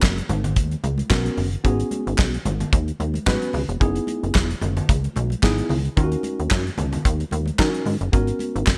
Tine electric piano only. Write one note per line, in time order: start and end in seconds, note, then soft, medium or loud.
0.00 0.16 B3 medium
0.00 0.16 C#4 medium
0.00 0.16 F#4 medium
0.00 0.16 A#4 medium
1.09 1.44 B3 medium
1.09 1.44 C#4 medium
1.09 1.44 F#4 medium
1.09 1.44 A#4 loud
1.64 2.32 B3 medium
1.64 2.32 C#4 medium
1.64 2.32 F#4 medium
1.64 2.32 G#4 medium
3.26 3.61 B3 medium
3.26 3.61 C#4 medium
3.26 3.61 F#4 medium
3.26 3.61 B4 loud
3.80 4.48 B3 medium
3.80 4.48 D#4 medium
3.80 4.49 E4 medium
3.80 4.49 G#4 loud
5.43 5.77 B3 medium
5.43 5.77 D#4 medium
5.43 5.77 E4 medium
5.43 5.77 G#4 loud
5.97 6.65 C#4 medium
5.97 6.65 D#4 medium
5.97 6.04 F4 medium
5.97 6.65 A#4 medium
6.04 6.68 F#4 medium
7.59 7.93 C#4 loud
7.59 7.93 D#4 medium
7.59 7.93 F#4 medium
7.59 7.93 A#4 loud
8.12 8.78 B3 medium
8.12 8.78 C#4 medium
8.12 8.78 F#4 medium
8.12 8.78 A#4 loud